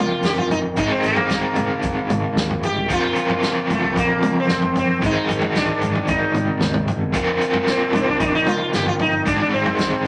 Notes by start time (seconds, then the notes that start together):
Already playing: F3 C4 F4 A#4
0.00 F4
0.23 F1 G4, snare, shaker
0.38 F4, floor tom
0.51 D#4, floor tom, shaker
0.77 G#1 G#2 D#3 G#3 C4 D#4 G#4, kick, floor tom, shaker
0.91 C4
1.03 G#1 A#3, shaker
1.16 floor tom
1.30 C2, snare, shaker
1.56 G#2, floor tom, mid tom, shaker
1.83 F1, kick, floor tom, shaker
2.10 G#1, mid tom, shaker
2.36 D#2, snare, shaker
2.50 floor tom
2.63 G4, floor tom, shaker
2.77 C2
2.89 F1 F3 C4 F4 A#4, kick, floor tom, shaker
2.93 F4
3.16 shaker
3.29 floor tom
3.43 snare, shaker
3.70 A3, floor tom, mid tom, shaker
3.83 C2
3.96 A#1 A#3, kick, floor tom, shaker
4.23 mid tom, shaker
4.40 C4
4.49 F1, snare, shaker
4.62 floor tom
4.76 C4, floor tom, shaker
5.01 G#1 G#2 D#3 G#3 C4 D#4 G#4, kick, floor tom, shaker
5.06 D#4
5.29 G#1, floor tom, shaker
5.41 floor tom
5.55 C2 D4, snare, shaker
5.81 G#2, floor tom, shaker
5.95 floor tom
6.08 F1 D#4, kick, floor tom, shaker
6.34 G#1, mid tom, shaker
6.61 D#2, snare, mid tom, shaker
6.74 mid tom
6.88 floor tom, shaker
7.01 G1
7.12 F1 F3 C4 F4 A#4, kick, floor tom, shaker
7.41 shaker
7.53 floor tom
7.67 C4, snare, shaker
7.93 D4, floor tom, mid tom, shaker
8.00 C4
8.08 C2 D4
8.20 A#1 D#4, kick, floor tom, shaker
8.26 D4
8.35 D#4
8.46 F4, mid tom, shaker
8.73 G1 G4, snare, shaker
8.86 F4, floor tom
8.99 D#4, floor tom
9.25 G#1 G#2 D#3 G#3 C4 D4 D#4 G#4, kick, floor tom, shaker
9.41 D4
9.53 G#1 C4
9.66 floor tom
9.79 C2, snare, shaker